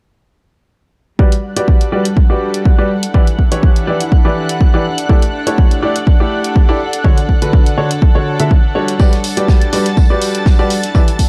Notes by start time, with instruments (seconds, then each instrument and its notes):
1.19 string section G3, grand piano G3 F#4 G4 B4 D5, analog synth pad F#5 F#6, kick
1.32 closed hi-hat
1.47 string section D4
1.56 grand piano G3 F#4 G4 B4 D5, string section A4, closed hi-hat
1.68 kick
1.81 closed hi-hat
1.92 grand piano G3 F#4 G4 B4 D5
2.05 string section F#5, closed hi-hat
2.17 kick
2.30 grand piano G3 F#4 G4 B4 D5
2.54 closed hi-hat
2.65 kick
2.78 grand piano G3 F#4 G4 B4 D5
3.03 closed hi-hat
3.14 grand piano E3 E4 G4 B4 D5, string section E4, kick
3.27 closed hi-hat
3.39 kick
3.52 grand piano E3 E4 G4 B4 C#5, closed hi-hat
3.63 kick
3.76 closed hi-hat
3.87 grand piano E3 E4 G4 B4 D5
4.01 closed hi-hat
4.12 kick
4.25 grand piano E3 E4 G4 B4 D5
4.49 closed hi-hat
4.61 kick
4.74 grand piano E3 E4 G4 B4 D5
4.98 closed hi-hat
5.09 grand piano A3 E4 G4 A4 D5, kick
5.22 closed hi-hat
5.47 grand piano A3 E4 G4 A4 C#5, closed hi-hat
5.58 kick
5.71 closed hi-hat
5.83 grand piano A3 E4 G4 A4 D5
5.96 closed hi-hat
6.07 kick
6.20 grand piano A3 E4 G4 A4 D5
6.44 closed hi-hat
6.56 kick
6.69 grand piano E4 G4 A4 D5
6.93 closed hi-hat
7.04 grand piano D3 D4 F#4 A4 C#5, kick
7.18 closed hi-hat
7.29 kick
7.42 grand piano D3 D4 F#4 A4 B4, closed hi-hat
7.53 kick
7.66 closed hi-hat
7.78 grand piano D3 D4 F#4 A4 C#5
7.91 closed hi-hat
8.02 kick
8.15 grand piano D3 D4 F#4 A4 C#5
8.40 grand piano D3 D4 F#4 A4 E5, closed hi-hat
8.51 kick
8.75 grand piano G3 D4 F#4 A4 C#5
8.88 closed hi-hat
8.99 grand piano G3 F#4 G4 B4 D5, string section G3, analog synth pad A5 A6, kick, tambourine
9.13 snare, closed hi-hat
9.24 open hi-hat, tambourine
9.37 grand piano G3 F#4 G4 B4 D5, closed hi-hat
9.48 kick, snare, tambourine
9.62 closed hi-hat
9.73 grand piano G3 F#4 G4 B4 D5, open hi-hat, tambourine
9.86 snare, closed hi-hat
9.97 kick, tambourine
10.10 grand piano G3 F#4 G4 B4 D5
10.22 open hi-hat, tambourine
10.35 closed hi-hat
10.46 kick, snare, tambourine
10.59 grand piano G3 F#4 G4 B4 D5
10.70 open hi-hat, tambourine
10.83 snare, closed hi-hat
10.94 grand piano E3 E4 G4 B4 D5, string section E4, kick, tambourine
11.08 closed hi-hat
11.19 kick, open hi-hat, tambourine